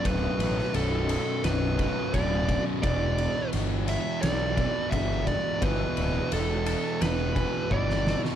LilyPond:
<<
  \new Staff \with { instrumentName = "Lead electric guitar" } { \time 4/4 \key e \dorian \tempo 4 = 86 b'4 a'8 a'8 b'4 d''8. r16 | d''4 r8 e''8 d''4 e''8 d''8 | b'4 a'8 a'8 b'4 d''8. r16 | }
  \new Staff \with { instrumentName = "Distorted electric guitar" } { \clef bass \time 4/4 \key e \dorian <b,, fis, b,>2~ <b,, fis, b,>8 <b,, fis, b,>8 <b,, fis, b,>4 | <e, b, e>2~ <e, b, e>8 <e, b, e>8 <e, b, e>4 | <e, b, e>2~ <e, b, e>8 <e, b, e>8 <e, b, e>4 | }
  \new Staff \with { instrumentName = "Picked electric bass" } { \clef bass \time 4/4 \key e \dorian d,,8 a,,8 b,,,4 b,,,4 d,,4 | e,,4 g,,4 b,,4 g,,4 | g,,8 d,,8 e,,4 e,,4 g,,4 | }
  \new DrumStaff \with { instrumentName = "Drums" } \drummode { \time 4/4 <bd cymr>8 cymr16 sn16 cymr8 cymr8 <cymr sn>8 <bd cymr>8 <bd cymr>8 <bd cymr>8 | <bd cymr>8 cymr8 cymr8 cymr8 <cymr sn>8 <bd cymr>8 <bd cymr>8 <bd cymr>8 | <bd cymr>8 cymr8 cymr8 cymr8 <cymr sn>8 <bd cymr>8 <bd tommh>16 sn16 sn16 sn16 | }
>>